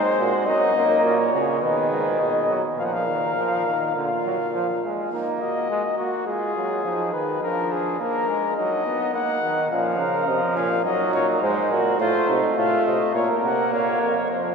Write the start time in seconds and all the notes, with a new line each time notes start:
Already playing: G#3 D#4 C5
0.19 A#2 F#4
0.46 F#2 F#3 D#4 D#5
0.76 F#2 A#3
1.05 A#2 F4 C#5
1.34 C#3 F#4
1.62 B2 D#3 G#4 B4
1.91 G#2
2.19 B2 G#4 D#5
2.49 F#3
2.78 A#2 F3 A#4 F5
2.85 F#5
2.93 F5
3.08 D#3
3.37 F3
3.66 D#3
3.95 A#2 D3 F4 F5
4.25 F#3
4.54 F3
4.83 G#3
5.12 A#3 D#4
5.40 F#4 D#5
5.70 G#3
5.98 A#3 F#4
6.26 G#3 F4 G#4
6.56 F#3
6.85 F3 D#4
7.13 D#3 B4
7.42 F3 D4 A#4
7.72 G#4
7.99 A#3 D4 A#4
8.29 G#3
8.57 F#3 D#4 D#5
8.86 B3
9.13 A#3 D#4 F#5
9.43 D#3
9.70 A#2 F3 C#4 F5
9.98 C#3 A#4
10.27 C3 F3 D#5
10.56 A#2 C#4 F5
10.85 F#2 F#3 D#4 D#5
11.14 A#2 C#5
11.42 G#2 G#3 C5
11.71 A#2 F#4 A#4
11.99 A2 A3 F4 C5
12.28 C3 D#4
12.56 A2 A3 F4 F5
12.86 C3 D#5
13.15 A#2 A#3 A#4 C#5
13.44 C3 F#5
13.73 A#2 C#5 F5
14.02 F2 A#4
14.30 F2 F3 C5 F5